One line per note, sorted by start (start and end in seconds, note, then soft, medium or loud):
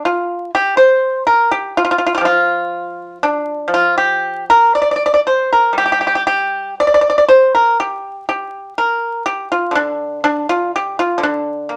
0.05 0.50 F4 medium
0.55 0.76 G4 medium
0.77 1.23 C5 medium
1.27 1.49 A#4 medium
1.51 1.74 G4 medium
1.77 1.83 F4 medium
1.85 1.90 F4 medium
1.91 1.97 F4 medium
1.98 2.04 F4 medium
2.07 2.12 F4 medium
2.15 2.17 F4 medium
2.15 2.24 G4 medium
2.21 3.67 F3 soft
2.25 3.17 F4 medium
3.23 3.68 D4 medium
3.68 6.76 F3 soft
3.74 3.96 F4 medium
3.98 4.44 G4 medium
4.50 4.72 A#4 medium
4.75 4.80 D5 medium
4.82 4.88 D5 soft
4.91 4.95 D5 soft
4.96 5.02 D5 soft
5.06 5.11 D5 medium
5.14 5.19 D5 soft
5.27 5.49 C5 medium
5.53 5.75 A#4 medium
5.73 8.75 G3 soft
5.78 5.84 G4 medium
5.86 5.91 G4 soft
5.92 5.98 G4 medium
6.01 6.06 G4 soft
6.07 6.13 G4 medium
6.15 6.21 G4 soft
6.27 6.74 G4 medium
6.80 6.86 D5 medium
6.87 6.93 D5 soft
6.94 7.00 D5 medium
7.01 7.08 D5 soft
7.10 7.15 D5 medium
7.18 7.23 D5 medium
7.29 7.51 C5 medium
7.55 7.77 A#4 medium
7.80 8.25 G4 medium
8.29 8.73 G4 medium
8.78 9.22 A#4 medium
9.26 9.48 G4 medium
9.52 9.73 F4 medium
9.71 11.17 D3 medium
9.75 10.20 D4 medium
10.24 10.45 D4 medium
10.49 10.70 F4 medium
10.76 10.96 G4 medium
10.99 11.20 F4 medium
11.18 11.77 D3 medium
11.23 11.77 D4 medium
11.69 11.77 A#3 soft